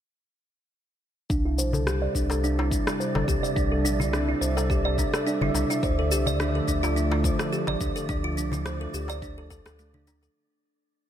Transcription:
1.30 C2 C3 D4 D5, kick, cabasa
1.42 G3 E4
1.58 A#1 C5, cabasa
1.73 C2 A4, darbuka dum, cabasa
1.87 D4 G4, cross-stick, cabasa
1.97 E5
2.02 D5
2.15 C2 D4, kick, cabasa
2.30 A4, darbuka ka, darbuka tek, cabasa
2.44 D4, cabasa
2.59 E4, darbuka ka, darbuka tek
2.72 D4, kick, cabasa
2.87 E4, cross-stick, darbuka ka, cabasa
3.00 C5, cabasa
3.15 G1 A4, darbuka tek, darbuka dum
3.28 C2 G4, kick, cabasa
3.43 D5, cabasa
3.56 C2 D4, kick, cabasa
3.72 A4
3.85 A#1 D4, cabasa
4.00 C2 E4, darbuka dum, cabasa
4.13 D4, cross-stick, cabasa
4.28 E4
4.41 C2 C5, cabasa
4.57 A4, darbuka ka, darbuka tek, cabasa
4.70 G4, kick, cabasa
4.85 D5, darbuka ka
4.98 D4, kick, darbuka ka, cabasa
5.14 A4, cross-stick, darbuka tek, cabasa
5.27 D4, cabasa
5.41 G1 E4, darbuka dum
5.54 C2 D4, darbuka tek, cabasa
5.70 E4, darbuka ka, cabasa
5.83 D2 D3 C5, kick, cabasa
5.99 A4
6.10 C2 A3 G4, cabasa
6.26 D2 F3 D5, darbuka dum, cabasa
6.40 D4, cross-stick, cabasa
6.55 A4
6.68 D2 D4, kick, cabasa
6.83 F4, darbuka ka, darbuka tek, cabasa
6.96 D4, cabasa
7.12 E4, darbuka ka, darbuka tek
7.24 C5, kick, cabasa
7.39 A4, cross-stick, darbuka ka, cabasa
7.52 G4, cabasa
7.67 A1 D5, darbuka tek, darbuka dum
7.81 D2 D4, kick, cabasa
7.96 A4, cabasa
8.09 D2 D4, kick, cabasa
8.24 F4
8.37 C2 D4, cabasa
8.52 D2 E4, darbuka dum, cabasa
8.66 C5, cross-stick, cabasa
8.81 A4
8.94 D2 G4, cabasa
9.08 D5, darbuka ka, darbuka tek, cabasa
9.22 D4, kick, cabasa
9.38 A4, darbuka ka
9.50 D2 A4, kick, darbuka ka, cabasa
9.66 D2 A4, cross-stick, darbuka tek, cabasa
9.79 A3, cabasa
9.94 D4, darbuka dum
10.07 D4, darbuka tek, cabasa
10.22 A4, darbuka ka, cabasa

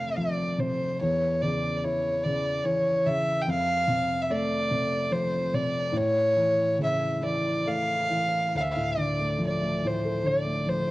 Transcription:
Already playing: F2 C3 A3 F5
0.16 F3 D5
0.58 C3 C5
1.01 E2 C#5
1.42 C#3 D5
1.76 D5
1.84 E4 C#5
2.24 C#3 D5
2.64 E3 C#5
3.06 C#3 E5
3.42 G5
3.47 F2 F5
3.88 C3
4.22 E5
4.30 A3 D5
4.71 C3
5.11 F3 C5
5.54 C3 D5
5.92 A2
5.97 C#5
6.36 E3
6.79 C#3
6.83 E5
7.21 E3 D5
7.66 A3 F5
8.10 E3
8.55 D2 F5
8.60 E5
8.73 A2 F5
8.97 D3 D5
9.19 A3
9.39 F3
9.47 D5
9.61 A3
9.84 A2 C5
10.04 A4
10.24 D3 D5
10.44 A3
10.67 F3 C5
10.87 A3

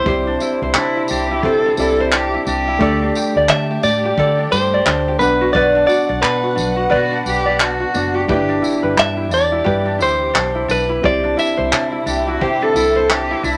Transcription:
Already playing: E4 G4 C5
0.04 C2 D3 C4 E4 G4 C5 D5, kick
0.27 D4
0.40 E4, tambourine
0.62 C2 C5
0.74 C3 D4 E4, clap
0.97 E4
1.08 C2 D4 G4, tambourine
1.31 E4
1.43 C3 G4 A4 C5, kick
1.66 D4
1.77 C2 C4 E4 G4 A4 D5, tambourine
2.00 C5
2.11 D4 G4, clap
2.34 E4
2.46 C2 D4 G4, tambourine
2.68 E4
2.79 D2 A3 D4 G4 A4 D5, kick
3.02 D4
3.15 G4, tambourine
3.36 D2 D5
3.49 D3 D4 E5, clap
3.71 G4
3.83 A2 D4 D5, tambourine
4.05 G4
4.18 D3 A4 D5, kick
4.39 D4
4.52 G2 G4 C5, tambourine
4.74 D5
4.86 D2 D4, clap
5.08 G4
5.19 B1 B2 B3 D4 B4 D5 F#5, tambourine
5.41 F#4
5.53 B1 B4 D5, kick
5.75 D4
5.87 F#4 D5, tambourine
6.09 B1 D5
6.22 B2 D4 B4, clap
6.43 F#4
6.56 B1 D4, tambourine
6.76 F#4
6.90 B2 F#4 B4 D5, kick
7.11 D4
7.26 B1 G4, tambourine
7.46 D5
7.59 D4 F#4, clap
7.80 F#4
7.94 F#1 B3 D4 F#4 D5, tambourine
8.14 F#4 G4
8.28 G1 E3 A3 E4 G4 B4, kick
8.32 D4 D5
8.49 D4
8.62 E4, tambourine
8.83 G1 B4
8.97 G2 D4 E5, clap
9.17 E4
9.31 E2 D4 D5, tambourine
9.52 E4
9.64 G2 G4 B4, kick
9.85 D4
9.99 D2 E4 C5, tambourine
10.34 B1 D4, clap
10.55 E4
10.68 B1 D4 B4, tambourine
10.89 E4
11.02 C2 D3 C4 E4 G4 C5 D5, kick
11.06 D5
11.24 D4
11.37 E4 E5, tambourine
11.57 C2 C5
11.71 C3 D4, clap
11.92 E4
12.06 C2 D4 G4, tambourine
12.27 E4 F#4
12.41 C3 G4 C5, kick
12.62 D4 A4
12.75 C2 E4, tambourine
12.96 C5
13.09 D4 G4, clap
13.31 E4
13.44 C2 D4 E4, tambourine

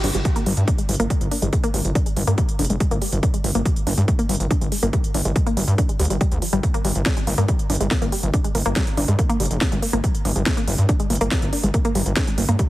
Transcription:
0.04 G1 D4, open hi-hat
0.15 G1 G#3, closed hi-hat
0.25 G#3, kick, closed hi-hat
0.36 A#3, closed hi-hat
0.46 G1 G3, open hi-hat
0.57 G2, closed hi-hat
0.68 D4, kick, closed hi-hat
0.78 G#3, closed hi-hat
0.89 G1 G#3, open hi-hat
0.94 closed hi-hat
1.00 G1 A#3, closed hi-hat
1.10 G3, kick, closed hi-hat
1.21 G1, closed hi-hat
1.31 D4, open hi-hat
1.42 G1 G#3, closed hi-hat
1.53 G#3, kick, closed hi-hat
1.64 A#3, closed hi-hat
1.74 G1 G3, open hi-hat
1.85 G1, closed hi-hat
1.95 D4, kick, closed hi-hat
2.06 G#3, closed hi-hat
2.17 G1 G#3, open hi-hat
2.27 G2 A#3, closed hi-hat
2.38 G3, kick, closed hi-hat
2.49 closed hi-hat
2.59 F1 D4, open hi-hat
2.64 closed hi-hat
2.70 F1 G#3, closed hi-hat
2.80 G#3, kick, closed hi-hat
2.91 G1 A#3, closed hi-hat
3.02 G3, open hi-hat
3.12 G1, closed hi-hat
3.23 D4, kick, closed hi-hat
3.34 G#3, closed hi-hat
3.44 G1 G#3, open hi-hat
3.55 G1 A#3, closed hi-hat
3.65 G3, kick, closed hi-hat
3.76 closed hi-hat
3.87 G1 D4, open hi-hat
3.98 G2 G#3, closed hi-hat
4.08 G#3, kick, closed hi-hat
4.19 A#3, closed hi-hat
4.29 G1 G3, open hi-hat
4.35 closed hi-hat
4.40 G1, closed hi-hat
4.51 D4, kick, closed hi-hat
4.61 G1 G#3, closed hi-hat
4.72 G#3, open hi-hat
4.83 G1 A#3, closed hi-hat
4.93 G3, kick, closed hi-hat
5.04 closed hi-hat
5.14 G1 D4, open hi-hat
5.25 G1 G#3, closed hi-hat
5.36 G#3, kick, closed hi-hat
5.47 A#3, closed hi-hat
5.57 G1 G3, open hi-hat
5.68 G2, closed hi-hat
5.78 D4, kick, closed hi-hat
5.89 G#3, closed hi-hat
5.99 D2 G3, open hi-hat
6.05 closed hi-hat
6.10 G1 G3, closed hi-hat
6.21 G3, kick, closed hi-hat
6.32 D2, closed hi-hat
6.42 F3, open hi-hat
6.53 G1 G3, closed hi-hat
6.63 A#3, kick, closed hi-hat
6.74 A#3, closed hi-hat
6.85 G1 G3, open hi-hat
6.95 G1, closed hi-hat
7.06 D4, kick, snare, closed hi-hat
7.17 G#3, closed hi-hat
7.27 G1 A#3, open hi-hat
7.38 G2 A#3, closed hi-hat
7.48 G3, kick, closed hi-hat
7.59 closed hi-hat
7.70 G1 D4, open hi-hat
7.75 closed hi-hat
7.81 G1 G#3, closed hi-hat
7.91 A#3, kick, snare, closed hi-hat
8.02 G1 A#3, closed hi-hat
8.12 G3, open hi-hat
8.23 G1, closed hi-hat
8.34 D4, kick, closed hi-hat
8.44 G#3, closed hi-hat
8.55 G1 A#3, open hi-hat
8.66 G1 A#3, closed hi-hat
8.76 G3, kick, snare, closed hi-hat
8.87 closed hi-hat
8.97 G1 D4, open hi-hat
9.08 G2 G#3, closed hi-hat
9.19 A#3, kick, closed hi-hat
9.29 A#3, closed hi-hat
9.40 F1 G3, open hi-hat
9.45 closed hi-hat
9.51 F1, closed hi-hat
9.61 D4, kick, snare, closed hi-hat
9.72 G1 G#3, closed hi-hat
9.82 A#3, open hi-hat
9.93 G1 A#3, closed hi-hat
10.04 G3, kick, closed hi-hat
10.15 closed hi-hat
10.25 G1 D4, open hi-hat
10.36 G1 G#3, closed hi-hat
10.46 A#3, kick, snare, closed hi-hat
10.57 A#3, closed hi-hat
10.67 G1 G3, open hi-hat
10.78 G2, closed hi-hat
10.89 D4, kick, closed hi-hat
11.00 G#3, closed hi-hat
11.10 G1 A#3, open hi-hat
11.15 closed hi-hat
11.21 G1 A#3, closed hi-hat
11.31 G3, kick, snare, closed hi-hat
11.42 G1, closed hi-hat
11.53 D4, open hi-hat
11.63 G1 G#3, closed hi-hat
11.74 A#3, kick, closed hi-hat
11.85 A#3, closed hi-hat
11.95 G1 G3, open hi-hat
12.06 G1, closed hi-hat
12.16 D4, kick, snare, closed hi-hat
12.27 G#3, closed hi-hat
12.38 G1 A#3, open hi-hat
12.49 G2 A#3, closed hi-hat
12.59 G3, kick, closed hi-hat

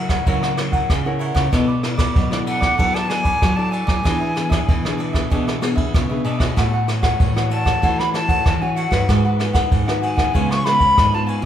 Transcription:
Already playing: C#3 F#3 E4 A#4 C#5
0.09 A#4 C#5 F#5, kick, cross-stick, ride
0.26 C#3 F#3 E4 A#4 C#5 F#5, kick, ride
0.43 A#4 C#5 F#5, cross-stick
0.57 E4 A#4 C#5, muted cavaquinho stroke, cross-stick, ride
0.72 A#4 C#5 F#5, kick, ride
0.90 C#3, kick, cross-stick, ride
1.05 E4 A#4 C#5 F#5
1.19 E4 A#4 C#5 F#5, ride
1.35 C#3 A#4 C#5 F#5, kick, cross-stick, ride
1.52 B2 B3 D4 E4 A4 B4 D5, kick, cross-stick, ride
1.68 A4 B4 D5
1.83 E4 A4 D5, muted cavaquinho stroke, cross-stick, ride
1.97 A4 B4 D5, kick, cross-stick, ride
2.15 B2 F#3, kick, ride
2.31 E4 A4 B4 D5, cross-stick
2.46 D4 A4 B4 D5 F#5, ride
2.61 A4 B4 D5, kick, cross-stick, ride
2.78 F#3 B3 D4 E4 A4 B4 D5, kick, ride
2.94 A4 B4 D5 A5, cross-stick
3.09 E4 A4 D5 G#5, muted cavaquinho stroke, cross-stick, ride
3.23 A4 B4 D5, kick, ride
3.42 F#3, kick, cross-stick, ride
3.56 E4 A4 B4 D5 A5
3.71 D4 A4 B4 D5 G#5, ride
3.87 F#3 A4 B4 D5, kick, cross-stick, ride
4.03 E3 B3 D4 G#4 B4 E5, kick, cross-stick, ride
4.20 G#4 B4 E5
4.35 B3 D4 G#4, muted cavaquinho stroke, cross-stick, ride
4.50 G#4 B4 E5, kick, cross-stick, ride
4.69 B2 E3, kick, ride
4.83 B3 D4 G#4 B4 E5, cross-stick
4.98 D4 G#4 B4 E5, ride
5.13 G#4 B4 E5, kick, cross-stick, ride
5.30 B2 E3 B3 D4 G#4 B4 E5, kick, ride
5.47 G#4 B4 E5, cross-stick
5.61 B3 D4 G#4, muted cavaquinho stroke, cross-stick, ride
5.76 G#4 B4 E5, kick, ride
5.94 B2 C#3, kick, cross-stick, ride
6.10 B3 D4 G#4 B4 E5
6.24 B2 D4 G#4 B4 E5, ride
6.39 E4 F#4 G#4 B4 C#5 E5, kick, cross-stick, ride
6.57 A2 A3 F#4 A4 C#5 F#5, kick, cross-stick, ride
6.73 A4 C#5 F#5
6.87 E4 F#4 C#5, muted cavaquinho stroke, cross-stick, ride
7.02 A4 C#5 F#5, kick, cross-stick, ride
7.20 A2 E3, kick, ride
7.36 E4 F#4 A4 C#5 F#5, cross-stick
7.50 F#4 A4 C#5 F#5 A5, ride
7.65 A4 C#5 F#5, kick, cross-stick, ride
7.82 E3 A3 E4 F#4 A4 C#5 F#5, kick, ride
7.98 A4 C#5 F#5 B5, cross-stick
8.13 E4 F#4 C#5 A5, muted cavaquinho stroke, cross-stick, ride
8.28 A4 C#5 F#5, kick, ride
8.46 E3, kick, cross-stick, ride
8.61 E4 F#4 A4 C#5 F#5 G#5
8.76 F#4 A4 C#5 F#5, ride
8.91 G2 D#4 F#4 A4 B4 C#5 F#5, kick, cross-stick, ride
9.08 G#2 G#3 F#4 G#4 B4 F#5, kick, cross-stick, ride
9.25 G#4 B4 F#5
9.39 D#4 F#4 B4, muted cavaquinho stroke, cross-stick, ride
9.53 G#4 B4 F#5, kick, cross-stick, ride
9.71 G#2 D#3, kick, ride
9.87 D#4 F#4 G#4 B4 F#5, cross-stick
10.01 F#4 G#4 B4 F#5 G#5, ride
10.16 G#4 B4 F#5, kick, cross-stick, ride
10.34 C#3 G#3 B3 F4 B4 C#5 F5, kick, ride
10.50 B4 C#5 F5 C#6, cross-stick
10.64 G#3 B3 F4 B5, muted cavaquinho stroke, cross-stick, ride
10.79 B4 C#5 F5, kick, ride
10.98 G#2, kick, cross-stick, ride
11.12 G#3 B3 F4 B4 C#5 F5 A5
11.26 F4 B4 C#5 F5 G#5, ride
11.42 C#3 F5

